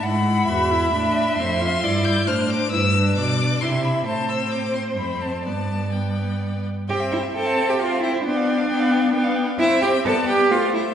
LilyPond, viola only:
\new Staff \with { instrumentName = "Viola" } { \time 3/4 \key a \dorian \tempo 4 = 133 e'4 fis'8 e'8 d'4 | \key c \major c'8 f'8 e'4 d'4 | e'8 d'4. e'4 | c'2 c'4 |
b4 b4. r8 | c'4 c'4 c'4 | b4 b4 b4 | c'4 b4 a4 | }